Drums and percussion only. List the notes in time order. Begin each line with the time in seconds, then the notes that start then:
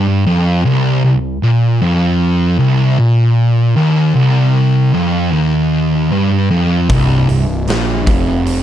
6.90 kick, open hi-hat
7.29 open hi-hat
7.68 snare, open hi-hat
8.07 kick, open hi-hat
8.47 open hi-hat